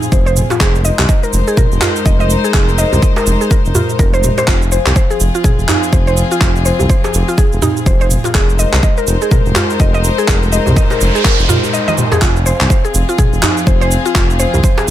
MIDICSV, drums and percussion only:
0, 0, Header, 1, 3, 480
1, 0, Start_track
1, 0, Key_signature, -4, "minor"
1, 0, Tempo, 483871
1, 600, Time_signature, 4, 2, 24, 8
1, 14785, End_track
2, 0, Start_track
2, 0, Title_t, "Djembe"
2, 498, Note_on_c, 9, 62, 88
2, 597, Note_off_c, 9, 62, 0
2, 982, Note_on_c, 9, 63, 97
2, 1081, Note_off_c, 9, 63, 0
2, 1797, Note_on_c, 9, 64, 84
2, 1896, Note_off_c, 9, 64, 0
2, 2903, Note_on_c, 9, 64, 88
2, 2907, Note_on_c, 9, 63, 91
2, 3002, Note_off_c, 9, 64, 0
2, 3006, Note_off_c, 9, 63, 0
2, 3138, Note_on_c, 9, 62, 99
2, 3237, Note_off_c, 9, 62, 0
2, 3719, Note_on_c, 9, 64, 81
2, 3720, Note_on_c, 9, 63, 90
2, 3818, Note_off_c, 9, 64, 0
2, 3820, Note_off_c, 9, 63, 0
2, 4206, Note_on_c, 9, 63, 62
2, 4305, Note_off_c, 9, 63, 0
2, 4342, Note_on_c, 9, 62, 87
2, 4441, Note_off_c, 9, 62, 0
2, 4821, Note_on_c, 9, 63, 82
2, 4920, Note_off_c, 9, 63, 0
2, 5645, Note_on_c, 9, 64, 87
2, 5744, Note_off_c, 9, 64, 0
2, 6737, Note_on_c, 9, 63, 93
2, 6743, Note_on_c, 9, 64, 89
2, 6836, Note_off_c, 9, 63, 0
2, 6842, Note_off_c, 9, 64, 0
2, 6986, Note_on_c, 9, 62, 94
2, 7086, Note_off_c, 9, 62, 0
2, 7561, Note_on_c, 9, 63, 87
2, 7562, Note_on_c, 9, 64, 92
2, 7661, Note_off_c, 9, 63, 0
2, 7661, Note_off_c, 9, 64, 0
2, 8175, Note_on_c, 9, 62, 79
2, 8274, Note_off_c, 9, 62, 0
2, 8658, Note_on_c, 9, 63, 88
2, 8757, Note_off_c, 9, 63, 0
2, 9480, Note_on_c, 9, 64, 96
2, 9579, Note_off_c, 9, 64, 0
2, 10574, Note_on_c, 9, 63, 90
2, 10583, Note_on_c, 9, 64, 85
2, 10673, Note_off_c, 9, 63, 0
2, 10682, Note_off_c, 9, 64, 0
2, 10817, Note_on_c, 9, 62, 90
2, 10917, Note_off_c, 9, 62, 0
2, 11393, Note_on_c, 9, 64, 95
2, 11394, Note_on_c, 9, 63, 87
2, 11492, Note_off_c, 9, 64, 0
2, 11493, Note_off_c, 9, 63, 0
2, 11541, Note_on_c, 9, 63, 53
2, 11640, Note_off_c, 9, 63, 0
2, 11783, Note_on_c, 9, 63, 59
2, 11882, Note_off_c, 9, 63, 0
2, 11882, Note_on_c, 9, 63, 60
2, 11981, Note_off_c, 9, 63, 0
2, 12019, Note_on_c, 9, 62, 84
2, 12118, Note_off_c, 9, 62, 0
2, 12508, Note_on_c, 9, 63, 86
2, 12607, Note_off_c, 9, 63, 0
2, 13319, Note_on_c, 9, 64, 97
2, 13419, Note_off_c, 9, 64, 0
2, 14424, Note_on_c, 9, 64, 88
2, 14428, Note_on_c, 9, 63, 93
2, 14523, Note_off_c, 9, 64, 0
2, 14527, Note_off_c, 9, 63, 0
2, 14658, Note_on_c, 9, 62, 107
2, 14757, Note_off_c, 9, 62, 0
2, 14785, End_track
3, 0, Start_track
3, 0, Title_t, "Drums"
3, 25, Note_on_c, 9, 82, 41
3, 119, Note_on_c, 9, 36, 125
3, 122, Note_off_c, 9, 82, 0
3, 122, Note_on_c, 9, 82, 52
3, 219, Note_off_c, 9, 36, 0
3, 221, Note_off_c, 9, 82, 0
3, 267, Note_on_c, 9, 82, 27
3, 361, Note_on_c, 9, 47, 79
3, 363, Note_off_c, 9, 82, 0
3, 363, Note_on_c, 9, 82, 94
3, 461, Note_off_c, 9, 47, 0
3, 462, Note_off_c, 9, 82, 0
3, 506, Note_on_c, 9, 82, 39
3, 599, Note_on_c, 9, 36, 118
3, 601, Note_on_c, 9, 39, 100
3, 603, Note_off_c, 9, 82, 0
3, 603, Note_on_c, 9, 82, 54
3, 698, Note_off_c, 9, 36, 0
3, 700, Note_off_c, 9, 39, 0
3, 702, Note_off_c, 9, 82, 0
3, 746, Note_on_c, 9, 82, 26
3, 842, Note_off_c, 9, 82, 0
3, 842, Note_on_c, 9, 82, 94
3, 941, Note_off_c, 9, 82, 0
3, 983, Note_on_c, 9, 39, 88
3, 984, Note_on_c, 9, 82, 42
3, 1080, Note_on_c, 9, 36, 125
3, 1081, Note_off_c, 9, 82, 0
3, 1081, Note_on_c, 9, 82, 60
3, 1082, Note_off_c, 9, 39, 0
3, 1179, Note_off_c, 9, 36, 0
3, 1181, Note_off_c, 9, 82, 0
3, 1224, Note_on_c, 9, 82, 28
3, 1321, Note_off_c, 9, 82, 0
3, 1321, Note_on_c, 9, 82, 93
3, 1420, Note_off_c, 9, 82, 0
3, 1464, Note_on_c, 9, 82, 41
3, 1560, Note_on_c, 9, 36, 127
3, 1560, Note_on_c, 9, 47, 91
3, 1562, Note_off_c, 9, 82, 0
3, 1562, Note_on_c, 9, 82, 57
3, 1659, Note_off_c, 9, 36, 0
3, 1660, Note_off_c, 9, 47, 0
3, 1661, Note_off_c, 9, 82, 0
3, 1705, Note_on_c, 9, 82, 27
3, 1800, Note_on_c, 9, 39, 96
3, 1802, Note_off_c, 9, 82, 0
3, 1802, Note_on_c, 9, 82, 99
3, 1900, Note_off_c, 9, 39, 0
3, 1901, Note_off_c, 9, 82, 0
3, 1945, Note_on_c, 9, 82, 43
3, 2040, Note_on_c, 9, 36, 127
3, 2042, Note_off_c, 9, 82, 0
3, 2042, Note_on_c, 9, 82, 51
3, 2139, Note_off_c, 9, 36, 0
3, 2141, Note_off_c, 9, 82, 0
3, 2187, Note_on_c, 9, 82, 27
3, 2282, Note_off_c, 9, 82, 0
3, 2282, Note_on_c, 9, 82, 94
3, 2381, Note_off_c, 9, 82, 0
3, 2426, Note_on_c, 9, 82, 41
3, 2520, Note_on_c, 9, 36, 126
3, 2521, Note_on_c, 9, 39, 89
3, 2523, Note_off_c, 9, 82, 0
3, 2523, Note_on_c, 9, 82, 52
3, 2619, Note_off_c, 9, 36, 0
3, 2620, Note_off_c, 9, 39, 0
3, 2622, Note_off_c, 9, 82, 0
3, 2666, Note_on_c, 9, 82, 27
3, 2762, Note_off_c, 9, 82, 0
3, 2762, Note_on_c, 9, 82, 93
3, 2861, Note_off_c, 9, 82, 0
3, 2905, Note_on_c, 9, 82, 43
3, 3000, Note_on_c, 9, 36, 117
3, 3003, Note_off_c, 9, 82, 0
3, 3003, Note_on_c, 9, 82, 53
3, 3100, Note_off_c, 9, 36, 0
3, 3102, Note_off_c, 9, 82, 0
3, 3147, Note_on_c, 9, 82, 28
3, 3242, Note_off_c, 9, 82, 0
3, 3242, Note_on_c, 9, 82, 90
3, 3341, Note_off_c, 9, 82, 0
3, 3386, Note_on_c, 9, 82, 39
3, 3480, Note_on_c, 9, 36, 122
3, 3482, Note_off_c, 9, 82, 0
3, 3482, Note_on_c, 9, 82, 55
3, 3579, Note_off_c, 9, 36, 0
3, 3581, Note_off_c, 9, 82, 0
3, 3625, Note_on_c, 9, 82, 26
3, 3719, Note_on_c, 9, 47, 81
3, 3721, Note_off_c, 9, 82, 0
3, 3721, Note_on_c, 9, 82, 96
3, 3819, Note_off_c, 9, 47, 0
3, 3820, Note_off_c, 9, 82, 0
3, 3865, Note_on_c, 9, 82, 41
3, 3960, Note_on_c, 9, 36, 119
3, 3962, Note_off_c, 9, 82, 0
3, 3962, Note_on_c, 9, 82, 50
3, 4059, Note_off_c, 9, 36, 0
3, 4061, Note_off_c, 9, 82, 0
3, 4105, Note_on_c, 9, 82, 26
3, 4200, Note_on_c, 9, 47, 77
3, 4202, Note_off_c, 9, 82, 0
3, 4202, Note_on_c, 9, 82, 96
3, 4299, Note_off_c, 9, 47, 0
3, 4301, Note_off_c, 9, 82, 0
3, 4345, Note_on_c, 9, 82, 39
3, 4440, Note_on_c, 9, 36, 110
3, 4441, Note_on_c, 9, 39, 94
3, 4443, Note_off_c, 9, 82, 0
3, 4443, Note_on_c, 9, 82, 54
3, 4539, Note_off_c, 9, 36, 0
3, 4540, Note_off_c, 9, 39, 0
3, 4542, Note_off_c, 9, 82, 0
3, 4585, Note_on_c, 9, 82, 26
3, 4682, Note_off_c, 9, 82, 0
3, 4682, Note_on_c, 9, 82, 93
3, 4781, Note_off_c, 9, 82, 0
3, 4823, Note_on_c, 9, 39, 81
3, 4824, Note_on_c, 9, 82, 39
3, 4919, Note_on_c, 9, 36, 119
3, 4922, Note_off_c, 9, 39, 0
3, 4922, Note_off_c, 9, 82, 0
3, 4922, Note_on_c, 9, 82, 55
3, 5019, Note_off_c, 9, 36, 0
3, 5021, Note_off_c, 9, 82, 0
3, 5066, Note_on_c, 9, 82, 26
3, 5161, Note_off_c, 9, 82, 0
3, 5161, Note_on_c, 9, 82, 92
3, 5260, Note_off_c, 9, 82, 0
3, 5306, Note_on_c, 9, 82, 39
3, 5399, Note_on_c, 9, 36, 114
3, 5401, Note_on_c, 9, 47, 90
3, 5403, Note_off_c, 9, 82, 0
3, 5403, Note_on_c, 9, 82, 56
3, 5498, Note_off_c, 9, 36, 0
3, 5500, Note_off_c, 9, 47, 0
3, 5502, Note_off_c, 9, 82, 0
3, 5548, Note_on_c, 9, 82, 25
3, 5640, Note_on_c, 9, 39, 91
3, 5642, Note_off_c, 9, 82, 0
3, 5642, Note_on_c, 9, 82, 93
3, 5740, Note_off_c, 9, 39, 0
3, 5741, Note_off_c, 9, 82, 0
3, 5786, Note_on_c, 9, 82, 39
3, 5879, Note_on_c, 9, 36, 116
3, 5883, Note_off_c, 9, 82, 0
3, 5883, Note_on_c, 9, 82, 48
3, 5978, Note_off_c, 9, 36, 0
3, 5982, Note_off_c, 9, 82, 0
3, 6026, Note_on_c, 9, 82, 27
3, 6121, Note_off_c, 9, 82, 0
3, 6121, Note_on_c, 9, 82, 91
3, 6220, Note_off_c, 9, 82, 0
3, 6265, Note_on_c, 9, 82, 41
3, 6359, Note_on_c, 9, 36, 110
3, 6361, Note_on_c, 9, 39, 84
3, 6363, Note_off_c, 9, 82, 0
3, 6363, Note_on_c, 9, 82, 53
3, 6458, Note_off_c, 9, 36, 0
3, 6460, Note_off_c, 9, 39, 0
3, 6462, Note_off_c, 9, 82, 0
3, 6506, Note_on_c, 9, 82, 23
3, 6602, Note_off_c, 9, 82, 0
3, 6602, Note_on_c, 9, 82, 90
3, 6701, Note_off_c, 9, 82, 0
3, 6745, Note_on_c, 9, 82, 40
3, 6840, Note_on_c, 9, 36, 106
3, 6843, Note_off_c, 9, 82, 0
3, 6843, Note_on_c, 9, 82, 51
3, 6939, Note_off_c, 9, 36, 0
3, 6942, Note_off_c, 9, 82, 0
3, 6987, Note_on_c, 9, 82, 27
3, 7084, Note_off_c, 9, 82, 0
3, 7084, Note_on_c, 9, 82, 90
3, 7183, Note_off_c, 9, 82, 0
3, 7226, Note_on_c, 9, 82, 38
3, 7319, Note_on_c, 9, 36, 118
3, 7323, Note_off_c, 9, 82, 0
3, 7323, Note_on_c, 9, 82, 52
3, 7418, Note_off_c, 9, 36, 0
3, 7422, Note_off_c, 9, 82, 0
3, 7466, Note_on_c, 9, 82, 25
3, 7561, Note_on_c, 9, 47, 82
3, 7563, Note_off_c, 9, 82, 0
3, 7563, Note_on_c, 9, 82, 92
3, 7661, Note_off_c, 9, 47, 0
3, 7662, Note_off_c, 9, 82, 0
3, 7707, Note_on_c, 9, 82, 39
3, 7799, Note_on_c, 9, 36, 117
3, 7802, Note_off_c, 9, 82, 0
3, 7802, Note_on_c, 9, 82, 48
3, 7899, Note_off_c, 9, 36, 0
3, 7901, Note_off_c, 9, 82, 0
3, 7946, Note_on_c, 9, 82, 26
3, 8040, Note_on_c, 9, 47, 77
3, 8042, Note_off_c, 9, 82, 0
3, 8042, Note_on_c, 9, 82, 93
3, 8139, Note_off_c, 9, 47, 0
3, 8141, Note_off_c, 9, 82, 0
3, 8185, Note_on_c, 9, 82, 37
3, 8279, Note_on_c, 9, 36, 112
3, 8281, Note_on_c, 9, 39, 91
3, 8282, Note_off_c, 9, 82, 0
3, 8282, Note_on_c, 9, 82, 50
3, 8379, Note_off_c, 9, 36, 0
3, 8380, Note_off_c, 9, 39, 0
3, 8382, Note_off_c, 9, 82, 0
3, 8427, Note_on_c, 9, 82, 25
3, 8521, Note_off_c, 9, 82, 0
3, 8521, Note_on_c, 9, 82, 85
3, 8621, Note_off_c, 9, 82, 0
3, 8664, Note_on_c, 9, 39, 84
3, 8665, Note_on_c, 9, 82, 39
3, 8759, Note_on_c, 9, 36, 110
3, 8761, Note_off_c, 9, 82, 0
3, 8761, Note_on_c, 9, 82, 53
3, 8763, Note_off_c, 9, 39, 0
3, 8859, Note_off_c, 9, 36, 0
3, 8860, Note_off_c, 9, 82, 0
3, 8904, Note_on_c, 9, 82, 25
3, 9000, Note_off_c, 9, 82, 0
3, 9000, Note_on_c, 9, 82, 83
3, 9099, Note_off_c, 9, 82, 0
3, 9144, Note_on_c, 9, 82, 36
3, 9239, Note_on_c, 9, 36, 114
3, 9239, Note_on_c, 9, 47, 93
3, 9240, Note_off_c, 9, 82, 0
3, 9240, Note_on_c, 9, 82, 53
3, 9338, Note_off_c, 9, 36, 0
3, 9338, Note_off_c, 9, 47, 0
3, 9340, Note_off_c, 9, 82, 0
3, 9383, Note_on_c, 9, 82, 24
3, 9478, Note_on_c, 9, 39, 91
3, 9480, Note_off_c, 9, 82, 0
3, 9480, Note_on_c, 9, 82, 91
3, 9578, Note_off_c, 9, 39, 0
3, 9579, Note_off_c, 9, 82, 0
3, 9623, Note_on_c, 9, 82, 38
3, 9719, Note_on_c, 9, 36, 115
3, 9721, Note_off_c, 9, 82, 0
3, 9721, Note_on_c, 9, 82, 46
3, 9818, Note_off_c, 9, 36, 0
3, 9820, Note_off_c, 9, 82, 0
3, 9864, Note_on_c, 9, 82, 26
3, 9961, Note_off_c, 9, 82, 0
3, 9961, Note_on_c, 9, 82, 87
3, 10060, Note_off_c, 9, 82, 0
3, 10104, Note_on_c, 9, 82, 38
3, 10199, Note_on_c, 9, 36, 108
3, 10200, Note_on_c, 9, 39, 95
3, 10202, Note_off_c, 9, 82, 0
3, 10202, Note_on_c, 9, 82, 49
3, 10299, Note_off_c, 9, 36, 0
3, 10299, Note_off_c, 9, 39, 0
3, 10301, Note_off_c, 9, 82, 0
3, 10344, Note_on_c, 9, 82, 25
3, 10441, Note_off_c, 9, 82, 0
3, 10441, Note_on_c, 9, 82, 84
3, 10540, Note_off_c, 9, 82, 0
3, 10584, Note_on_c, 9, 47, 86
3, 10585, Note_on_c, 9, 82, 38
3, 10679, Note_on_c, 9, 36, 115
3, 10681, Note_off_c, 9, 82, 0
3, 10681, Note_on_c, 9, 82, 53
3, 10683, Note_off_c, 9, 47, 0
3, 10778, Note_off_c, 9, 36, 0
3, 10781, Note_off_c, 9, 82, 0
3, 10825, Note_on_c, 9, 82, 25
3, 10921, Note_off_c, 9, 82, 0
3, 10921, Note_on_c, 9, 82, 86
3, 11020, Note_off_c, 9, 82, 0
3, 11065, Note_on_c, 9, 82, 38
3, 11158, Note_on_c, 9, 36, 113
3, 11161, Note_on_c, 9, 39, 88
3, 11162, Note_off_c, 9, 82, 0
3, 11162, Note_on_c, 9, 82, 51
3, 11258, Note_off_c, 9, 36, 0
3, 11260, Note_off_c, 9, 39, 0
3, 11261, Note_off_c, 9, 82, 0
3, 11306, Note_on_c, 9, 82, 25
3, 11402, Note_on_c, 9, 47, 86
3, 11404, Note_off_c, 9, 82, 0
3, 11404, Note_on_c, 9, 82, 94
3, 11501, Note_off_c, 9, 47, 0
3, 11503, Note_off_c, 9, 82, 0
3, 11548, Note_on_c, 9, 82, 37
3, 11644, Note_off_c, 9, 82, 0
3, 11644, Note_on_c, 9, 82, 49
3, 11743, Note_off_c, 9, 82, 0
3, 11785, Note_on_c, 9, 48, 52
3, 11787, Note_on_c, 9, 82, 26
3, 11882, Note_on_c, 9, 47, 83
3, 11884, Note_off_c, 9, 48, 0
3, 11884, Note_off_c, 9, 82, 0
3, 11884, Note_on_c, 9, 82, 93
3, 11981, Note_off_c, 9, 47, 0
3, 11983, Note_off_c, 9, 82, 0
3, 12024, Note_on_c, 9, 45, 81
3, 12026, Note_on_c, 9, 82, 38
3, 12119, Note_on_c, 9, 36, 114
3, 12120, Note_on_c, 9, 39, 98
3, 12122, Note_off_c, 9, 82, 0
3, 12122, Note_on_c, 9, 82, 55
3, 12123, Note_off_c, 9, 45, 0
3, 12218, Note_off_c, 9, 36, 0
3, 12219, Note_off_c, 9, 39, 0
3, 12221, Note_off_c, 9, 82, 0
3, 12265, Note_on_c, 9, 82, 24
3, 12363, Note_off_c, 9, 82, 0
3, 12363, Note_on_c, 9, 82, 91
3, 12463, Note_off_c, 9, 82, 0
3, 12504, Note_on_c, 9, 39, 84
3, 12506, Note_on_c, 9, 82, 42
3, 12599, Note_on_c, 9, 36, 119
3, 12602, Note_off_c, 9, 82, 0
3, 12602, Note_on_c, 9, 82, 54
3, 12603, Note_off_c, 9, 39, 0
3, 12698, Note_off_c, 9, 36, 0
3, 12702, Note_off_c, 9, 82, 0
3, 12746, Note_on_c, 9, 82, 27
3, 12841, Note_off_c, 9, 82, 0
3, 12841, Note_on_c, 9, 82, 94
3, 12940, Note_off_c, 9, 82, 0
3, 12985, Note_on_c, 9, 82, 40
3, 13079, Note_on_c, 9, 36, 116
3, 13081, Note_on_c, 9, 47, 96
3, 13082, Note_off_c, 9, 82, 0
3, 13082, Note_on_c, 9, 82, 55
3, 13178, Note_off_c, 9, 36, 0
3, 13180, Note_off_c, 9, 47, 0
3, 13182, Note_off_c, 9, 82, 0
3, 13225, Note_on_c, 9, 82, 26
3, 13320, Note_on_c, 9, 39, 103
3, 13322, Note_off_c, 9, 82, 0
3, 13322, Note_on_c, 9, 82, 92
3, 13419, Note_off_c, 9, 39, 0
3, 13421, Note_off_c, 9, 82, 0
3, 13465, Note_on_c, 9, 82, 42
3, 13559, Note_on_c, 9, 36, 112
3, 13563, Note_off_c, 9, 82, 0
3, 13563, Note_on_c, 9, 82, 49
3, 13658, Note_off_c, 9, 36, 0
3, 13662, Note_off_c, 9, 82, 0
3, 13706, Note_on_c, 9, 82, 27
3, 13802, Note_off_c, 9, 82, 0
3, 13802, Note_on_c, 9, 82, 92
3, 13901, Note_off_c, 9, 82, 0
3, 13945, Note_on_c, 9, 82, 39
3, 14039, Note_on_c, 9, 36, 116
3, 14041, Note_on_c, 9, 39, 101
3, 14043, Note_off_c, 9, 82, 0
3, 14043, Note_on_c, 9, 82, 56
3, 14138, Note_off_c, 9, 36, 0
3, 14140, Note_off_c, 9, 39, 0
3, 14142, Note_off_c, 9, 82, 0
3, 14187, Note_on_c, 9, 82, 27
3, 14282, Note_off_c, 9, 82, 0
3, 14282, Note_on_c, 9, 82, 89
3, 14381, Note_off_c, 9, 82, 0
3, 14426, Note_on_c, 9, 82, 42
3, 14519, Note_on_c, 9, 36, 122
3, 14521, Note_off_c, 9, 82, 0
3, 14521, Note_on_c, 9, 82, 57
3, 14618, Note_off_c, 9, 36, 0
3, 14621, Note_off_c, 9, 82, 0
3, 14665, Note_on_c, 9, 82, 26
3, 14764, Note_off_c, 9, 82, 0
3, 14785, End_track
0, 0, End_of_file